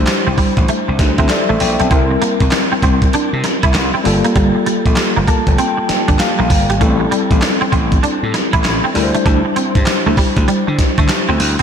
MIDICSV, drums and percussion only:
0, 0, Header, 1, 2, 480
1, 0, Start_track
1, 0, Tempo, 612245
1, 1496, Time_signature, 4, 2, 24, 8
1, 9113, End_track
2, 0, Start_track
2, 0, Title_t, "Drums"
2, 53, Note_on_c, 9, 39, 91
2, 57, Note_on_c, 9, 42, 68
2, 58, Note_on_c, 9, 38, 109
2, 131, Note_off_c, 9, 39, 0
2, 135, Note_off_c, 9, 42, 0
2, 137, Note_off_c, 9, 38, 0
2, 296, Note_on_c, 9, 36, 79
2, 297, Note_on_c, 9, 46, 64
2, 374, Note_off_c, 9, 36, 0
2, 376, Note_off_c, 9, 46, 0
2, 446, Note_on_c, 9, 42, 50
2, 447, Note_on_c, 9, 36, 92
2, 525, Note_off_c, 9, 42, 0
2, 526, Note_off_c, 9, 36, 0
2, 536, Note_on_c, 9, 42, 73
2, 615, Note_off_c, 9, 42, 0
2, 776, Note_on_c, 9, 36, 86
2, 776, Note_on_c, 9, 38, 67
2, 776, Note_on_c, 9, 42, 76
2, 854, Note_off_c, 9, 38, 0
2, 854, Note_off_c, 9, 42, 0
2, 855, Note_off_c, 9, 36, 0
2, 926, Note_on_c, 9, 42, 52
2, 929, Note_on_c, 9, 36, 87
2, 1005, Note_off_c, 9, 42, 0
2, 1007, Note_off_c, 9, 36, 0
2, 1010, Note_on_c, 9, 39, 89
2, 1014, Note_on_c, 9, 42, 83
2, 1015, Note_on_c, 9, 38, 97
2, 1088, Note_off_c, 9, 39, 0
2, 1093, Note_off_c, 9, 42, 0
2, 1094, Note_off_c, 9, 38, 0
2, 1256, Note_on_c, 9, 46, 76
2, 1334, Note_off_c, 9, 46, 0
2, 1407, Note_on_c, 9, 42, 55
2, 1486, Note_off_c, 9, 42, 0
2, 1496, Note_on_c, 9, 36, 111
2, 1496, Note_on_c, 9, 42, 70
2, 1574, Note_off_c, 9, 36, 0
2, 1575, Note_off_c, 9, 42, 0
2, 1738, Note_on_c, 9, 42, 67
2, 1816, Note_off_c, 9, 42, 0
2, 1885, Note_on_c, 9, 42, 51
2, 1886, Note_on_c, 9, 36, 84
2, 1963, Note_off_c, 9, 42, 0
2, 1964, Note_off_c, 9, 36, 0
2, 1971, Note_on_c, 9, 39, 90
2, 1975, Note_on_c, 9, 42, 71
2, 1976, Note_on_c, 9, 38, 119
2, 2049, Note_off_c, 9, 39, 0
2, 2053, Note_off_c, 9, 42, 0
2, 2055, Note_off_c, 9, 38, 0
2, 2215, Note_on_c, 9, 36, 86
2, 2216, Note_on_c, 9, 42, 64
2, 2293, Note_off_c, 9, 36, 0
2, 2295, Note_off_c, 9, 42, 0
2, 2366, Note_on_c, 9, 42, 52
2, 2367, Note_on_c, 9, 36, 84
2, 2445, Note_off_c, 9, 42, 0
2, 2446, Note_off_c, 9, 36, 0
2, 2456, Note_on_c, 9, 42, 78
2, 2535, Note_off_c, 9, 42, 0
2, 2695, Note_on_c, 9, 38, 70
2, 2695, Note_on_c, 9, 42, 74
2, 2773, Note_off_c, 9, 38, 0
2, 2773, Note_off_c, 9, 42, 0
2, 2846, Note_on_c, 9, 42, 56
2, 2849, Note_on_c, 9, 36, 91
2, 2925, Note_off_c, 9, 42, 0
2, 2927, Note_off_c, 9, 36, 0
2, 2931, Note_on_c, 9, 39, 89
2, 2936, Note_on_c, 9, 42, 81
2, 2937, Note_on_c, 9, 38, 99
2, 3010, Note_off_c, 9, 39, 0
2, 3015, Note_off_c, 9, 42, 0
2, 3016, Note_off_c, 9, 38, 0
2, 3177, Note_on_c, 9, 46, 76
2, 3256, Note_off_c, 9, 46, 0
2, 3328, Note_on_c, 9, 42, 53
2, 3406, Note_off_c, 9, 42, 0
2, 3415, Note_on_c, 9, 42, 77
2, 3416, Note_on_c, 9, 36, 115
2, 3494, Note_off_c, 9, 36, 0
2, 3494, Note_off_c, 9, 42, 0
2, 3657, Note_on_c, 9, 42, 63
2, 3735, Note_off_c, 9, 42, 0
2, 3807, Note_on_c, 9, 36, 86
2, 3808, Note_on_c, 9, 42, 51
2, 3885, Note_off_c, 9, 36, 0
2, 3886, Note_off_c, 9, 42, 0
2, 3891, Note_on_c, 9, 39, 99
2, 3895, Note_on_c, 9, 42, 70
2, 3897, Note_on_c, 9, 38, 112
2, 3969, Note_off_c, 9, 39, 0
2, 3974, Note_off_c, 9, 42, 0
2, 3975, Note_off_c, 9, 38, 0
2, 4136, Note_on_c, 9, 36, 79
2, 4139, Note_on_c, 9, 42, 66
2, 4214, Note_off_c, 9, 36, 0
2, 4217, Note_off_c, 9, 42, 0
2, 4287, Note_on_c, 9, 42, 50
2, 4288, Note_on_c, 9, 36, 87
2, 4365, Note_off_c, 9, 42, 0
2, 4366, Note_off_c, 9, 36, 0
2, 4378, Note_on_c, 9, 42, 73
2, 4456, Note_off_c, 9, 42, 0
2, 4618, Note_on_c, 9, 38, 69
2, 4618, Note_on_c, 9, 42, 82
2, 4696, Note_off_c, 9, 38, 0
2, 4697, Note_off_c, 9, 42, 0
2, 4769, Note_on_c, 9, 42, 53
2, 4770, Note_on_c, 9, 36, 87
2, 4848, Note_off_c, 9, 42, 0
2, 4849, Note_off_c, 9, 36, 0
2, 4853, Note_on_c, 9, 39, 76
2, 4858, Note_on_c, 9, 42, 84
2, 4859, Note_on_c, 9, 38, 105
2, 4932, Note_off_c, 9, 39, 0
2, 4936, Note_off_c, 9, 42, 0
2, 4938, Note_off_c, 9, 38, 0
2, 5096, Note_on_c, 9, 36, 97
2, 5099, Note_on_c, 9, 46, 79
2, 5175, Note_off_c, 9, 36, 0
2, 5177, Note_off_c, 9, 46, 0
2, 5251, Note_on_c, 9, 42, 55
2, 5330, Note_off_c, 9, 42, 0
2, 5338, Note_on_c, 9, 36, 113
2, 5340, Note_on_c, 9, 42, 68
2, 5417, Note_off_c, 9, 36, 0
2, 5418, Note_off_c, 9, 42, 0
2, 5581, Note_on_c, 9, 42, 70
2, 5660, Note_off_c, 9, 42, 0
2, 5729, Note_on_c, 9, 36, 87
2, 5730, Note_on_c, 9, 42, 51
2, 5807, Note_off_c, 9, 36, 0
2, 5809, Note_off_c, 9, 42, 0
2, 5815, Note_on_c, 9, 39, 87
2, 5820, Note_on_c, 9, 42, 71
2, 5821, Note_on_c, 9, 38, 109
2, 5894, Note_off_c, 9, 39, 0
2, 5898, Note_off_c, 9, 42, 0
2, 5900, Note_off_c, 9, 38, 0
2, 6057, Note_on_c, 9, 36, 84
2, 6059, Note_on_c, 9, 42, 66
2, 6135, Note_off_c, 9, 36, 0
2, 6137, Note_off_c, 9, 42, 0
2, 6208, Note_on_c, 9, 42, 49
2, 6209, Note_on_c, 9, 36, 95
2, 6286, Note_off_c, 9, 42, 0
2, 6287, Note_off_c, 9, 36, 0
2, 6300, Note_on_c, 9, 42, 72
2, 6378, Note_off_c, 9, 42, 0
2, 6539, Note_on_c, 9, 38, 73
2, 6539, Note_on_c, 9, 42, 78
2, 6617, Note_off_c, 9, 38, 0
2, 6617, Note_off_c, 9, 42, 0
2, 6689, Note_on_c, 9, 42, 51
2, 6690, Note_on_c, 9, 36, 90
2, 6767, Note_off_c, 9, 42, 0
2, 6769, Note_off_c, 9, 36, 0
2, 6774, Note_on_c, 9, 39, 79
2, 6779, Note_on_c, 9, 42, 81
2, 6780, Note_on_c, 9, 38, 102
2, 6852, Note_off_c, 9, 39, 0
2, 6857, Note_off_c, 9, 42, 0
2, 6858, Note_off_c, 9, 38, 0
2, 7018, Note_on_c, 9, 46, 80
2, 7096, Note_off_c, 9, 46, 0
2, 7170, Note_on_c, 9, 42, 52
2, 7249, Note_off_c, 9, 42, 0
2, 7257, Note_on_c, 9, 36, 113
2, 7258, Note_on_c, 9, 42, 73
2, 7336, Note_off_c, 9, 36, 0
2, 7337, Note_off_c, 9, 42, 0
2, 7497, Note_on_c, 9, 42, 69
2, 7575, Note_off_c, 9, 42, 0
2, 7646, Note_on_c, 9, 36, 89
2, 7646, Note_on_c, 9, 42, 54
2, 7724, Note_off_c, 9, 42, 0
2, 7725, Note_off_c, 9, 36, 0
2, 7732, Note_on_c, 9, 39, 95
2, 7736, Note_on_c, 9, 42, 72
2, 7738, Note_on_c, 9, 38, 111
2, 7811, Note_off_c, 9, 39, 0
2, 7815, Note_off_c, 9, 42, 0
2, 7816, Note_off_c, 9, 38, 0
2, 7975, Note_on_c, 9, 36, 83
2, 7978, Note_on_c, 9, 46, 60
2, 8054, Note_off_c, 9, 36, 0
2, 8057, Note_off_c, 9, 46, 0
2, 8126, Note_on_c, 9, 42, 49
2, 8127, Note_on_c, 9, 36, 87
2, 8205, Note_off_c, 9, 36, 0
2, 8205, Note_off_c, 9, 42, 0
2, 8218, Note_on_c, 9, 42, 75
2, 8296, Note_off_c, 9, 42, 0
2, 8456, Note_on_c, 9, 36, 87
2, 8456, Note_on_c, 9, 38, 70
2, 8456, Note_on_c, 9, 42, 81
2, 8535, Note_off_c, 9, 36, 0
2, 8535, Note_off_c, 9, 38, 0
2, 8535, Note_off_c, 9, 42, 0
2, 8606, Note_on_c, 9, 42, 52
2, 8608, Note_on_c, 9, 36, 91
2, 8685, Note_off_c, 9, 42, 0
2, 8687, Note_off_c, 9, 36, 0
2, 8691, Note_on_c, 9, 39, 81
2, 8696, Note_on_c, 9, 42, 80
2, 8697, Note_on_c, 9, 38, 103
2, 8770, Note_off_c, 9, 39, 0
2, 8774, Note_off_c, 9, 42, 0
2, 8775, Note_off_c, 9, 38, 0
2, 8937, Note_on_c, 9, 46, 81
2, 9016, Note_off_c, 9, 46, 0
2, 9088, Note_on_c, 9, 42, 52
2, 9113, Note_off_c, 9, 42, 0
2, 9113, End_track
0, 0, End_of_file